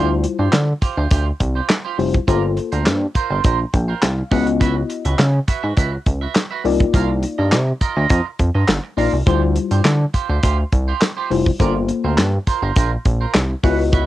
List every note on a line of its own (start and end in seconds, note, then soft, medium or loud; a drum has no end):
0.00 0.26 D2 loud
0.00 0.67 G3 medium
0.00 0.67 E4 medium
0.00 0.11 F4 medium
0.00 0.67 F4 medium
0.00 0.68 C5 medium
0.10 muted clean electric guitar stroke soft
0.24 muted clean electric guitar stroke soft
0.24 closed hi-hat medium
0.39 0.49 G2 medium
0.39 0.51 F4 medium
0.39 0.51 G4 medium
0.39 0.51 C5 medium
0.53 0.73 D3 loud
0.53 muted clean electric guitar stroke soft
0.53 snare loud
0.53 clap medium
0.53 closed hi-hat medium
0.68 muted clean electric guitar stroke soft
0.82 0.97 F4 medium
0.82 0.97 G4 medium
0.82 0.96 C5 medium
0.82 kick medium
0.82 closed hi-hat medium
0.97 1.07 D2 loud
0.97 1.10 F4 medium
0.97 1.09 G4 medium
0.97 1.09 C5 medium
1.11 1.32 D2 medium
1.11 1.28 F4 medium
1.11 1.26 G4 medium
1.11 1.25 C5 medium
1.11 kick loud
1.11 closed hi-hat loud
1.26 muted clean electric guitar stroke soft
1.40 1.61 C2 medium
1.40 muted clean electric guitar stroke soft
1.40 kick medium
1.40 closed hi-hat medium
1.55 1.68 F4 soft
1.55 1.67 G4 medium
1.55 1.67 C5 medium
1.69 muted clean electric guitar stroke soft
1.69 snare loud
1.69 clap medium
1.69 closed hi-hat medium
1.85 1.97 F4 medium
1.85 1.98 G4 medium
1.85 1.98 C5 medium
1.98 2.19 F1 medium
1.98 2.17 G3 medium
1.98 2.17 E4 medium
1.98 2.17 F4 medium
1.98 2.17 C5 medium
1.98 muted clean electric guitar stroke soft
1.98 open hi-hat medium
2.14 muted clean electric guitar stroke medium
2.14 kick loud
2.14 closed hi-hat soft
2.27 2.59 G1 loud
2.27 2.34 A3 medium
2.27 2.44 F4 medium
2.27 3.00 F4 medium
2.27 3.00 A4 medium
2.27 2.43 A#4 medium
2.27 3.00 C5 loud
2.27 2.43 D5 medium
2.27 kick loud
2.27 closed hi-hat medium
2.34 3.03 A#3 medium
2.43 muted clean electric guitar stroke soft
2.57 muted clean electric guitar stroke soft
2.57 closed hi-hat medium
2.72 2.87 D2 medium
2.72 2.84 F4 soft
2.72 2.84 A#4 medium
2.72 2.84 C5 medium
2.72 closed hi-hat medium
2.86 3.06 G2 loud
2.86 muted clean electric guitar stroke soft
2.86 snare loud
2.86 clap medium
2.86 closed hi-hat medium
3.01 muted clean electric guitar stroke soft
3.15 3.30 F4 medium
3.15 3.30 A#4 medium
3.15 3.29 C5 medium
3.15 kick medium
3.15 closed hi-hat medium
3.30 3.40 G1 loud
3.30 3.43 F4 medium
3.30 3.42 A#4 medium
3.30 3.42 C5 medium
3.44 3.65 A#1 medium
3.44 3.60 F4 medium
3.44 3.59 A#4 medium
3.44 3.58 C5 medium
3.44 kick loud
3.44 closed hi-hat loud
3.59 muted clean electric guitar stroke soft
3.73 3.94 A#1 loud
3.73 4.01 G5 medium
3.73 muted clean electric guitar stroke soft
3.73 kick medium
3.73 closed hi-hat medium
3.88 4.01 F4 soft
3.88 4.00 A#4 medium
3.88 4.00 C5 medium
4.02 4.23 C2 medium
4.02 4.30 F5 medium
4.02 snare loud
4.02 clap loud
4.02 closed hi-hat medium
4.18 muted clean electric guitar stroke soft
4.31 4.83 C#2 medium
4.31 5.25 B3 medium
4.31 5.25 E4 medium
4.31 4.48 F#4 medium
4.31 5.25 F#4 medium
4.31 4.47 B4 loud
4.31 5.26 D#5 medium
4.31 4.59 F#5 medium
4.31 4.46 F#5 loud
4.31 kick loud
4.31 open hi-hat medium
4.47 muted clean electric guitar stroke medium
4.47 closed hi-hat medium
4.60 4.77 F#4 medium
4.60 4.76 B4 loud
4.60 4.75 E5 loud
4.60 kick loud
4.60 closed hi-hat medium
4.76 muted clean electric guitar stroke soft
4.89 muted clean electric guitar stroke soft
4.89 closed hi-hat medium
5.05 5.15 C#2 loud
5.05 5.17 F#4 soft
5.05 5.17 B4 medium
5.05 5.17 E5 medium
5.05 closed hi-hat medium
5.19 5.40 C#3 loud
5.19 snare loud
5.19 clap medium
5.19 closed hi-hat medium
5.34 muted clean electric guitar stroke soft
5.48 5.63 F#4 medium
5.48 5.63 B4 medium
5.48 5.62 E5 medium
5.48 kick medium
5.48 closed hi-hat medium
5.63 5.73 G#2 loud
5.63 5.76 F#4 soft
5.63 5.75 B4 medium
5.63 5.75 E5 medium
5.77 5.98 C#2 medium
5.77 5.94 F#4 medium
5.77 5.92 B4 medium
5.77 5.91 E5 medium
5.77 kick loud
5.77 closed hi-hat loud
5.93 muted clean electric guitar stroke soft
6.06 6.27 C#2 medium
6.06 muted clean electric guitar stroke soft
6.06 kick medium
6.06 closed hi-hat medium
6.21 6.34 F#4 soft
6.21 6.34 B4 medium
6.21 6.33 E5 medium
6.35 muted clean electric guitar stroke soft
6.35 snare loud
6.35 clap medium
6.35 closed hi-hat loud
6.51 6.64 F#4 medium
6.51 6.65 B4 medium
6.51 6.65 E5 medium
6.64 6.85 C2 medium
6.64 7.58 A#3 medium
6.64 7.58 D#4 medium
6.64 7.58 F4 medium
6.64 7.59 D5 loud
6.64 muted clean electric guitar stroke soft
6.64 open hi-hat medium
6.80 muted clean electric guitar stroke soft
6.80 kick loud
6.80 closed hi-hat soft
6.93 7.25 C2 loud
6.93 7.10 F4 medium
6.93 7.09 A#4 loud
6.93 7.09 F5 loud
6.93 kick loud
6.93 closed hi-hat medium
7.09 muted clean electric guitar stroke soft
7.23 muted clean electric guitar stroke soft
7.23 closed hi-hat medium
7.38 7.54 G2 loud
7.38 7.51 F4 soft
7.38 7.50 A#4 medium
7.38 7.50 D#5 medium
7.52 7.73 C3 loud
7.52 snare loud
7.52 clap medium
7.52 closed hi-hat medium
7.67 muted clean electric guitar stroke soft
7.81 7.97 F4 medium
7.81 7.96 A#4 medium
7.81 7.95 D#5 medium
7.81 kick medium
7.81 closed hi-hat medium
7.96 8.06 D2 loud
7.96 8.09 F4 soft
7.96 8.08 A#4 medium
7.96 8.08 D#5 medium
8.10 8.21 F2 loud
8.10 8.27 F4 medium
8.10 8.25 A#4 medium
8.10 8.24 D#5 medium
8.10 kick loud
8.10 closed hi-hat loud
8.26 muted clean electric guitar stroke soft
8.39 8.50 F2 medium
8.39 muted clean electric guitar stroke soft
8.39 kick medium
8.39 closed hi-hat medium
8.55 8.65 G2 medium
8.55 8.67 F4 soft
8.55 8.67 A#4 medium
8.55 8.66 D#5 medium
8.68 8.79 G1 medium
8.68 muted clean electric guitar stroke soft
8.68 snare loud
8.68 clap loud
8.68 closed hi-hat medium
8.84 muted clean electric guitar stroke medium
8.97 9.09 A#1 medium
8.97 9.16 A#3 medium
8.97 9.16 D#4 medium
8.97 9.14 F4 medium
8.97 9.16 F4 medium
8.97 9.13 A#4 medium
8.97 9.16 D5 medium
8.97 9.12 F5 medium
8.97 open hi-hat medium
9.13 9.23 C2 medium
9.13 muted clean electric guitar stroke soft
9.26 9.58 D2 loud
9.26 9.99 G3 medium
9.26 9.99 E4 medium
9.26 9.43 F4 medium
9.26 9.99 F4 medium
9.26 9.42 G4 loud
9.26 10.00 C5 medium
9.26 9.41 C5 loud
9.26 kick loud
9.26 closed hi-hat medium
9.42 muted clean electric guitar stroke soft
9.56 muted clean electric guitar stroke soft
9.56 closed hi-hat medium
9.71 9.81 G2 medium
9.71 9.83 F4 soft
9.71 9.83 G4 medium
9.71 9.83 C5 medium
9.71 closed hi-hat medium
9.85 10.05 D3 loud
9.85 snare loud
9.85 clap medium
9.85 closed hi-hat medium
10.00 muted clean electric guitar stroke medium
10.14 10.30 F4 medium
10.14 10.29 G4 medium
10.14 10.28 C5 medium
10.14 kick medium
10.14 closed hi-hat medium
10.29 10.39 D2 loud
10.29 10.42 F4 medium
10.29 10.41 G4 medium
10.29 10.41 C5 medium
10.43 10.64 D2 loud
10.43 10.60 F4 medium
10.43 10.58 G4 medium
10.43 10.57 C5 medium
10.43 kick loud
10.43 closed hi-hat loud
10.58 muted clean electric guitar stroke soft
10.72 10.93 C2 medium
10.72 muted clean electric guitar stroke soft
10.72 kick medium
10.72 closed hi-hat medium
10.88 11.00 F4 soft
10.88 11.00 G4 medium
10.88 10.99 C5 medium
11.01 muted clean electric guitar stroke soft
11.01 snare loud
11.01 clap medium
11.01 closed hi-hat loud
11.17 11.29 F4 medium
11.17 11.30 G4 medium
11.17 11.30 C5 medium
11.30 11.51 F1 medium
11.30 11.49 G3 medium
11.30 11.49 E4 medium
11.30 11.49 F4 medium
11.30 11.50 C5 loud
11.30 muted clean electric guitar stroke soft
11.30 open hi-hat medium
11.46 muted clean electric guitar stroke soft
11.46 kick medium
11.59 11.91 G1 loud
11.59 12.32 A#3 medium
11.59 11.76 F4 medium
11.59 12.32 F4 medium
11.59 12.32 A4 medium
11.59 11.75 A#4 loud
11.59 12.33 C5 medium
11.59 11.75 D5 loud
11.59 kick loud
11.59 closed hi-hat medium
11.75 muted clean electric guitar stroke soft
11.89 muted clean electric guitar stroke medium
11.89 closed hi-hat medium
12.04 12.19 D2 medium
12.04 12.16 F4 soft
12.04 12.16 A#4 medium
12.04 12.16 C5 medium
12.18 12.38 G2 loud
12.18 snare loud
12.18 clap medium
12.18 closed hi-hat medium
12.34 muted clean electric guitar stroke soft
12.47 12.63 F4 medium
12.47 12.62 A#4 medium
12.47 12.61 C5 medium
12.47 kick medium
12.47 closed hi-hat medium
12.62 12.72 G1 loud
12.62 12.75 F4 soft
12.62 12.74 A#4 medium
12.62 12.74 C5 medium
12.76 12.97 A#1 medium
12.76 12.93 F4 medium
12.76 12.91 A#4 medium
12.76 12.90 C5 medium
12.76 kick loud
12.76 closed hi-hat loud
12.92 muted clean electric guitar stroke soft
13.05 13.26 A#1 loud
13.05 kick loud
13.05 closed hi-hat medium
13.21 13.33 F4 soft
13.21 13.33 A#4 medium
13.21 13.32 C5 medium
13.34 13.55 C2 medium
13.34 snare loud
13.34 clap medium
13.34 closed hi-hat medium
13.50 muted clean electric guitar stroke soft
13.63 14.06 C#2 loud
13.63 14.06 B3 medium
13.63 14.06 E4 medium
13.63 13.80 F#4 medium
13.63 14.06 F#4 medium
13.63 13.79 B4 medium
13.63 14.06 D#5 medium
13.63 13.79 F#5 medium
13.63 kick medium
13.63 open hi-hat medium
13.79 muted clean electric guitar stroke soft
13.92 14.06 F#4 medium
13.92 14.06 B4 medium
13.92 14.06 E5 medium
13.92 kick loud
13.92 closed hi-hat medium